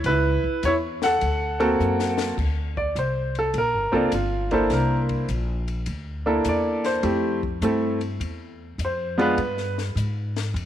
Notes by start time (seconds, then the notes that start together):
0.04 C#2 E4 B4, ride
0.43 muted upright bass stroke, kick
0.63 E2 C#5, hi-hat pedal, ride
0.67 E4
1.02 A4 F#5, snare
1.21 D2, ride
1.60 A#3 C4 F#4 A4, ride
1.80 F#2, hi-hat pedal
1.99 snare
2.18 snare
2.37 D2, kick, crash
2.77 D5, kick
2.95 C2 C5, hi-hat pedal, ride
3.35 A4, ride
3.54 A#1, ride
3.58 A#4
3.74 G1
3.92 F1 A#3 C4 F4 A4, kick
3.96 D4
4.12 G1 F4, hi-hat pedal, ride
4.51 A#3 D4 E4 A4 C5, kick, ride
4.70 C2 A#4, snare, ride
5.09 kick, ride
5.29 A#1, hi-hat pedal, ride
5.68 ride
5.86 D2, ride
6.26 A#3 D4 E4 A4
6.45 E2, hi-hat pedal, ride
6.49 D5
6.84 C5, snare, ride
7.03 F2 A3 C4 E4 G4, ride
7.43 kick
7.61 G2 A3 C4 E4 A4, hi-hat pedal, ride
8.01 ride
8.20 E2, ride
8.78 F2, hi-hat pedal, ride
8.85 C5
9.18 G#3 B3 D4 F4 B4, ride
9.37 G2, ride
9.58 snare
9.78 snare
9.95 G#2, hi-hat pedal, ride
10.36 snare, ride
10.54 F2, ride